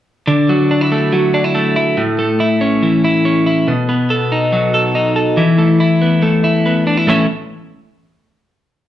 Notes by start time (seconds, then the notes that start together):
0.28 D3
0.49 F#3
0.71 D4
0.81 E4
0.92 A3
1.13 F#3
1.34 D4
1.44 E4
1.55 A3
1.76 E4
1.97 A2
2.19 A3
2.40 E4
2.61 C#4
2.83 E3
3.04 E4
3.25 C#4
3.46 E4
3.68 B2
3.89 B3
4.10 A4
4.32 D#4
4.53 F#3
4.74 A4
4.95 D#4
5.16 A4
5.37 E3
5.58 A3
5.80 E4
6.02 B3
6.22 A3
6.44 E4
6.66 B3
6.87 D4
6.97 E4
7.07 A2 E3 A3 C#4 E4